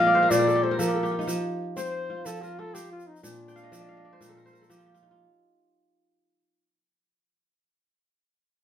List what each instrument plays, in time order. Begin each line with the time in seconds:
Already playing: kora A#2 F3 C4 F4 F5 G5, flugelhorn F5
0.00 kora D#5
0.07 kora D5
0.15 kora C5
0.23 kora A#4
0.30 kora A#2 C5, flugelhorn D5, shaker
0.39 kora A#4
0.47 kora A4, shaker
0.55 kora G4
0.63 kora A4, flugelhorn C5
0.71 kora A#4
0.79 kora F3 A4, flugelhorn A#4, shaker
0.87 kora G4, shaker
0.95 kora A4
1.03 kora G4, shaker
1.11 kora F4
1.19 kora D#4, shaker
1.27 kora F3, shaker
1.77 kora C4, flugelhorn C5, shaker
1.85 shaker
2.10 kora F4
2.26 kora F3, flugelhorn A4, shaker
2.35 shaker
2.41 flugelhorn F4, kora A#4, shaker
2.59 kora F4, flugelhorn A4
2.74 kora C4, flugelhorn G4, shaker
2.92 flugelhorn F4
3.00 shaker
3.07 flugelhorn D#4
3.16 shaker
3.23 kora A#2, flugelhorn D4, shaker
3.48 kora G5, shaker
3.56 kora F5, shaker
3.63 kora D#5
3.72 kora F3 D5, shaker
3.80 kora D#5
3.89 kora F5
3.97 kora D#5
4.05 kora D5
4.13 kora C5
4.20 kora A#2 A#4, shaker
4.29 kora A4
4.37 kora A#4, shaker
4.46 kora C5, shaker
4.53 kora A#4, shaker
4.61 kora A4, shaker
4.70 kora F3 G4, shaker
4.78 kora F4
4.86 kora G4
4.94 kora F4, shaker
5.03 kora D#4
5.11 kora F4